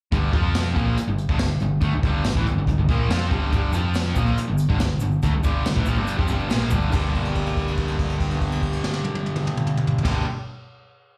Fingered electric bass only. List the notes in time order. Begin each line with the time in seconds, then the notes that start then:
0.12 G1
0.33 F2
0.76 A#1
0.98 muted fingered electric bass stroke
1.07 G1
1.29 G1
1.38 G1
1.60 G1
1.82 D2
1.92 G1
2.03 G1
2.25 G1
2.35 A1
2.45 G1
2.56 G1
2.67 G1
2.77 G1
2.89 A#1
3.08 F2
3.31 G1
3.52 G1
3.72 F2
4.16 A#1
4.49 G1
4.69 G1
4.81 G1
5.02 G1
5.23 D2
5.34 G1
5.44 G1
5.66 G1
5.76 A1
5.87 A#1
5.97 G1
6.18 F2
6.29 G1
6.51 A#1
6.72 G1
6.93 G1
10.05 G1